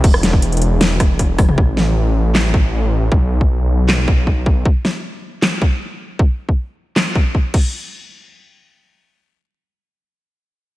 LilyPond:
<<
  \new Staff \with { instrumentName = "Detuned saw bass" } { \clef bass \time 4/4 \key c \lydian \tempo 4 = 156 e,,1 | a,,1 | b,,1 | r1 |
r1 | r1 | r1 | }
  \new DrumStaff \with { instrumentName = "Drums" } \drummode { \time 4/4 <cymc hh bd>16 ss16 <hh sn>16 bd16 hh16 hh32 hh32 hh8 <hh sn>8 <hh bd ss>8 <hh bd>8 <hho bd ss tommh>16 toml16 | bd8 sn8 r4 <hc sn>8 bd8 r4 | bd8. bd16 r4 <hc sn>8 bd8 bd8 bd8 | bd8 sn8 r4 <hc sn>8 bd8 r4 |
bd8. bd16 r4 <hc sn>8 bd8 bd8 <cymc bd>8 | r4 r4 r4 r4 | r4 r4 r4 r4 | }
>>